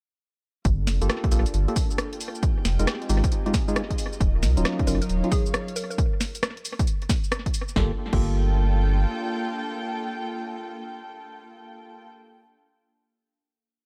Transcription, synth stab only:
0, 0, Header, 1, 2, 480
1, 0, Start_track
1, 0, Tempo, 444444
1, 702, Time_signature, 4, 2, 24, 8
1, 14966, End_track
2, 0, Start_track
2, 0, Title_t, "Synth stab"
2, 0, Program_c, 0, 62
2, 1097, Note_on_c, 0, 58, 76
2, 1098, Note_on_c, 0, 65, 70
2, 1098, Note_on_c, 0, 67, 71
2, 1098, Note_on_c, 0, 69, 86
2, 1402, Note_off_c, 0, 58, 0
2, 1402, Note_off_c, 0, 65, 0
2, 1402, Note_off_c, 0, 67, 0
2, 1402, Note_off_c, 0, 69, 0
2, 1422, Note_on_c, 0, 58, 88
2, 1422, Note_on_c, 0, 65, 83
2, 1422, Note_on_c, 0, 67, 81
2, 1422, Note_on_c, 0, 69, 95
2, 1557, Note_off_c, 0, 58, 0
2, 1557, Note_off_c, 0, 65, 0
2, 1557, Note_off_c, 0, 67, 0
2, 1557, Note_off_c, 0, 69, 0
2, 1817, Note_on_c, 0, 58, 74
2, 1817, Note_on_c, 0, 65, 66
2, 1817, Note_on_c, 0, 67, 65
2, 1817, Note_on_c, 0, 69, 77
2, 1891, Note_off_c, 0, 58, 0
2, 1891, Note_off_c, 0, 65, 0
2, 1891, Note_off_c, 0, 67, 0
2, 1891, Note_off_c, 0, 69, 0
2, 3017, Note_on_c, 0, 63, 74
2, 3017, Note_on_c, 0, 65, 71
2, 3018, Note_on_c, 0, 56, 81
2, 3018, Note_on_c, 0, 70, 91
2, 3091, Note_off_c, 0, 56, 0
2, 3091, Note_off_c, 0, 63, 0
2, 3091, Note_off_c, 0, 65, 0
2, 3091, Note_off_c, 0, 70, 0
2, 3341, Note_on_c, 0, 56, 86
2, 3341, Note_on_c, 0, 63, 81
2, 3342, Note_on_c, 0, 65, 78
2, 3342, Note_on_c, 0, 67, 98
2, 3477, Note_off_c, 0, 56, 0
2, 3477, Note_off_c, 0, 63, 0
2, 3477, Note_off_c, 0, 65, 0
2, 3477, Note_off_c, 0, 67, 0
2, 3736, Note_on_c, 0, 65, 74
2, 3736, Note_on_c, 0, 67, 92
2, 3737, Note_on_c, 0, 56, 81
2, 3737, Note_on_c, 0, 63, 72
2, 3810, Note_off_c, 0, 65, 0
2, 3810, Note_off_c, 0, 67, 0
2, 3811, Note_off_c, 0, 56, 0
2, 3811, Note_off_c, 0, 63, 0
2, 3976, Note_on_c, 0, 56, 83
2, 3976, Note_on_c, 0, 63, 77
2, 3977, Note_on_c, 0, 65, 74
2, 3977, Note_on_c, 0, 68, 91
2, 4122, Note_off_c, 0, 56, 0
2, 4122, Note_off_c, 0, 63, 0
2, 4122, Note_off_c, 0, 65, 0
2, 4122, Note_off_c, 0, 68, 0
2, 4938, Note_on_c, 0, 54, 76
2, 4938, Note_on_c, 0, 61, 69
2, 4938, Note_on_c, 0, 63, 70
2, 4938, Note_on_c, 0, 65, 82
2, 5242, Note_off_c, 0, 54, 0
2, 5242, Note_off_c, 0, 61, 0
2, 5242, Note_off_c, 0, 63, 0
2, 5242, Note_off_c, 0, 65, 0
2, 5262, Note_on_c, 0, 54, 87
2, 5262, Note_on_c, 0, 65, 97
2, 5263, Note_on_c, 0, 61, 82
2, 5263, Note_on_c, 0, 63, 81
2, 5397, Note_off_c, 0, 54, 0
2, 5397, Note_off_c, 0, 65, 0
2, 5398, Note_off_c, 0, 61, 0
2, 5398, Note_off_c, 0, 63, 0
2, 5658, Note_on_c, 0, 54, 73
2, 5658, Note_on_c, 0, 61, 64
2, 5658, Note_on_c, 0, 63, 68
2, 5658, Note_on_c, 0, 65, 81
2, 5731, Note_off_c, 0, 54, 0
2, 5731, Note_off_c, 0, 61, 0
2, 5731, Note_off_c, 0, 63, 0
2, 5731, Note_off_c, 0, 65, 0
2, 8382, Note_on_c, 0, 58, 84
2, 8382, Note_on_c, 0, 65, 78
2, 8382, Note_on_c, 0, 67, 79
2, 8382, Note_on_c, 0, 69, 97
2, 8543, Note_off_c, 0, 58, 0
2, 8543, Note_off_c, 0, 65, 0
2, 8543, Note_off_c, 0, 67, 0
2, 8543, Note_off_c, 0, 69, 0
2, 8777, Note_on_c, 0, 58, 85
2, 8777, Note_on_c, 0, 65, 77
2, 8777, Note_on_c, 0, 67, 81
2, 8778, Note_on_c, 0, 69, 94
2, 13457, Note_off_c, 0, 58, 0
2, 13457, Note_off_c, 0, 65, 0
2, 13457, Note_off_c, 0, 67, 0
2, 13457, Note_off_c, 0, 69, 0
2, 14966, End_track
0, 0, End_of_file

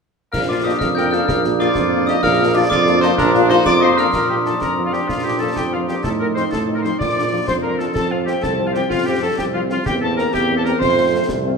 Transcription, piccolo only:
0, 0, Header, 1, 2, 480
1, 0, Start_track
1, 0, Key_signature, -2, "major"
1, 0, Tempo, 317460
1, 502, Time_signature, 6, 3, 24, 8
1, 17504, End_track
2, 0, Start_track
2, 0, Title_t, "Piccolo"
2, 0, Program_c, 0, 72
2, 5553, Note_on_c, 0, 86, 118
2, 5789, Note_on_c, 0, 84, 93
2, 5812, Note_off_c, 0, 86, 0
2, 6014, Note_off_c, 0, 84, 0
2, 6023, Note_on_c, 0, 82, 78
2, 6114, Note_off_c, 0, 82, 0
2, 6265, Note_on_c, 0, 82, 64
2, 6356, Note_off_c, 0, 82, 0
2, 6494, Note_on_c, 0, 79, 56
2, 6585, Note_off_c, 0, 79, 0
2, 6740, Note_on_c, 0, 81, 57
2, 6964, Note_off_c, 0, 81, 0
2, 6997, Note_on_c, 0, 82, 74
2, 7325, Note_off_c, 0, 82, 0
2, 7352, Note_on_c, 0, 77, 56
2, 7456, Note_on_c, 0, 79, 60
2, 7478, Note_off_c, 0, 77, 0
2, 7700, Note_on_c, 0, 77, 65
2, 7723, Note_off_c, 0, 79, 0
2, 7941, Note_on_c, 0, 79, 61
2, 7963, Note_off_c, 0, 77, 0
2, 8189, Note_on_c, 0, 81, 66
2, 8212, Note_off_c, 0, 79, 0
2, 8433, Note_on_c, 0, 79, 73
2, 8456, Note_off_c, 0, 81, 0
2, 8674, Note_on_c, 0, 77, 64
2, 8697, Note_off_c, 0, 79, 0
2, 8902, Note_off_c, 0, 77, 0
2, 8911, Note_on_c, 0, 79, 60
2, 9002, Note_off_c, 0, 79, 0
2, 9163, Note_on_c, 0, 81, 69
2, 9254, Note_off_c, 0, 81, 0
2, 9395, Note_on_c, 0, 82, 60
2, 9485, Note_off_c, 0, 82, 0
2, 9623, Note_on_c, 0, 84, 71
2, 9846, Note_off_c, 0, 84, 0
2, 9874, Note_on_c, 0, 81, 70
2, 9964, Note_off_c, 0, 81, 0
2, 10246, Note_on_c, 0, 82, 61
2, 10295, Note_off_c, 0, 82, 0
2, 10361, Note_on_c, 0, 84, 68
2, 10576, Note_off_c, 0, 84, 0
2, 10585, Note_on_c, 0, 86, 73
2, 10980, Note_off_c, 0, 86, 0
2, 11304, Note_on_c, 0, 84, 90
2, 11395, Note_off_c, 0, 84, 0
2, 11546, Note_on_c, 0, 82, 55
2, 11768, Note_off_c, 0, 82, 0
2, 11798, Note_on_c, 0, 81, 69
2, 11889, Note_off_c, 0, 81, 0
2, 12036, Note_on_c, 0, 81, 77
2, 12269, Note_on_c, 0, 77, 68
2, 12292, Note_off_c, 0, 81, 0
2, 12507, Note_off_c, 0, 77, 0
2, 12525, Note_on_c, 0, 79, 70
2, 12749, Note_on_c, 0, 81, 85
2, 12772, Note_off_c, 0, 79, 0
2, 13111, Note_on_c, 0, 77, 61
2, 13133, Note_off_c, 0, 81, 0
2, 13228, Note_off_c, 0, 77, 0
2, 13244, Note_on_c, 0, 79, 75
2, 13462, Note_on_c, 0, 77, 78
2, 13484, Note_off_c, 0, 79, 0
2, 13686, Note_on_c, 0, 79, 71
2, 13708, Note_off_c, 0, 77, 0
2, 13931, Note_off_c, 0, 79, 0
2, 13940, Note_on_c, 0, 81, 72
2, 14031, Note_off_c, 0, 81, 0
2, 14185, Note_on_c, 0, 79, 83
2, 14276, Note_off_c, 0, 79, 0
2, 14432, Note_on_c, 0, 77, 70
2, 14523, Note_off_c, 0, 77, 0
2, 14668, Note_on_c, 0, 77, 75
2, 14759, Note_off_c, 0, 77, 0
2, 14924, Note_on_c, 0, 79, 87
2, 15139, Note_off_c, 0, 79, 0
2, 15162, Note_on_c, 0, 81, 82
2, 15378, Note_off_c, 0, 81, 0
2, 15399, Note_on_c, 0, 82, 83
2, 15631, Note_on_c, 0, 79, 98
2, 15653, Note_off_c, 0, 82, 0
2, 15988, Note_off_c, 0, 79, 0
2, 15996, Note_on_c, 0, 81, 77
2, 16103, Note_off_c, 0, 81, 0
2, 16115, Note_on_c, 0, 82, 85
2, 16206, Note_off_c, 0, 82, 0
2, 16370, Note_on_c, 0, 84, 89
2, 17028, Note_off_c, 0, 84, 0
2, 17504, End_track
0, 0, End_of_file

